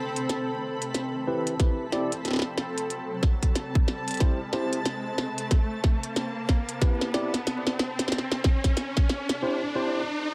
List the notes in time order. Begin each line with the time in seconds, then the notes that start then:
Already playing: C4 A4 G5 B5, riser
0.16 closed hi-hat
0.29 snare, closed hi-hat
0.82 closed hi-hat
0.94 snare, closed hi-hat
1.02 A5
1.27 C4 E4 G4 B4
1.47 closed hi-hat
1.60 C4 E4 G4 B4, kick, snare, closed hi-hat
1.92 C4 E4 G4 D5, snare
2.12 closed hi-hat
2.25 snare, closed hi-hat
2.28 snare
2.31 snare
2.33 snare
2.36 snare
2.39 snare
2.42 snare
2.58 snare
2.78 closed hi-hat
2.90 closed hi-hat
3.23 kick, snare
3.43 kick, closed hi-hat
3.56 snare, closed hi-hat
3.75 kick
3.88 snare
4.08 closed hi-hat
4.11 closed hi-hat
4.14 closed hi-hat
4.17 C4 E4 G4 C5, kick, snare, closed hi-hat
4.53 C4 E4 G4 C5, snare
4.73 closed hi-hat
4.86 snare, closed hi-hat
5.18 snare
5.38 closed hi-hat
5.51 kick, snare, closed hi-hat
5.84 kick, snare
6.03 closed hi-hat
6.16 snare, closed hi-hat
6.49 kick, snare
6.69 closed hi-hat
6.82 C4 E4 G4 B4, kick, snare, closed hi-hat
7.01 snare
7.14 C4 E4 G4 D5, snare
7.34 snare, closed hi-hat
7.47 snare, closed hi-hat
7.67 snare
7.79 snare
7.99 snare, closed hi-hat
8.08 snare
8.12 snare, closed hi-hat
8.18 snare
8.32 snare
8.44 kick, snare
8.64 kick, snare, closed hi-hat
8.77 snare, closed hi-hat
8.97 kick, snare
9.09 snare
9.29 snare, closed hi-hat
9.42 C4 E4 G4 C5
9.75 C4 E4 G4 C5